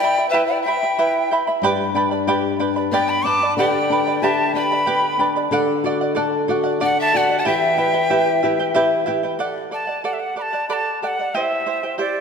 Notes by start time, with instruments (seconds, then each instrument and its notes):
Already playing: pan flute D5
0.00 charango E4 G5, quena G5
0.04 charango E5 B5
0.18 charango E4 E5 B5
0.29 charango E4 B4, pan flute B4, quena E5
0.34 charango E5 G5 B5
0.46 pan flute D5, quena G5
0.62 pan flute E5, quena G5
0.66 charango E4 E5 G5 B5
0.83 charango E4 E5 B5
0.99 charango E4 B4 E5 G5 B5
1.31 charango E4 E5 G5 B5
1.47 charango E4 E5 B5
1.62 nylon-string guitar G2, charango G4 B4 D5 G5 B5
1.95 nylon-string guitar D4, charango B4 D5 G5 B5
2.11 charango B4 D5 B5
2.27 nylon-string guitar G4, charango G4 B4 D5 G5 B5
2.59 nylon-string guitar D4, charango B4 D5 G5 B5
2.76 charango B4 D5 B5
2.92 nylon-string guitar B3, charango G4 B4 D5 G5 B5, pan flute D5, quena G5
3.06 pan flute G5, quena B5
3.24 nylon-string guitar D4, charango B4 D5 G5 B5, pan flute A5, quena D6
3.42 charango B4 D5 B5
3.57 nylon-string guitar D3, charango G4 B4 D5 G5 B5, pan flute D5, quena G5
3.90 nylon-string guitar D4, charango B4 D5 G5 B5
4.07 charango B4 D5 B5
4.22 nylon-string guitar G4, charango G4 B4 D5 G5 B5, pan flute E5, quena A5
4.54 nylon-string guitar D4, charango B4 D5 G5 B5, pan flute G5, quena B5
4.72 charango B4 D5 B5
4.86 nylon-string guitar B3, charango G4 B4 D5 G5 B5
5.19 nylon-string guitar D4, charango B4 D5 G5 B5
5.36 charango B4 D5 B5
5.51 nylon-string guitar D3, charango A4 D5 F#5
5.84 nylon-string guitar F#4, charango A4 D5 F#5
6.01 charango D5 F#5
6.15 charango A4 D5 F#5, nylon-string guitar A4
6.48 nylon-string guitar F#4, charango A4 D5 F#5
6.64 charango D5 F#5
6.80 nylon-string guitar D4, charango A4 D5 F#5, pan flute D5
6.84 quena F#5
6.99 pan flute E5, quena A5
7.13 nylon-string guitar F#4, charango A4 D5 F#5, pan flute D5
7.17 quena F#5
7.29 charango D5 F#5
7.38 pan flute F#5, quena A5
7.45 nylon-string guitar E3, charango E4 G4 B4 E5 G5, pan flute E5, quena G5
7.77 charango E4 B4 E5 G5, nylon-string guitar G4
7.93 charango E4 B4 G5
8.10 charango E4 G4 B4 E5 G5, nylon-string guitar B4
8.43 charango E4 B4 E5 G5, nylon-string guitar G4
8.60 charango E4 B4 G5
8.74 charango E4 G4 B4 E5 G5, nylon-string guitar E4
9.06 charango E4 B4 E5 G5, nylon-string guitar G4
9.23 charango E4 B4 G5
9.39 charango A4 D5 F#5
9.71 charango A4 D5 F#5, quena A5
9.87 charango D5 F#5
10.04 charango A4 D5 F#5, quena F#5
10.13 quena E5
10.20 quena F#5
10.36 charango A4 D5 F#5, quena B5
10.42 quena A5
10.53 charango D5 F#5
10.69 charango A4 D5 F#5, quena A5 B5
11.02 charango A4 D5 F#5, quena G5
11.07 quena F#5
11.19 charango D5 F#5
11.35 charango E4 G4 C5 E5 G5, quena E5
11.66 charango E4 C5 E5 G5
11.83 charango E4 C5 G5
11.98 charango E4 G4 C5 E5 G5, quena D5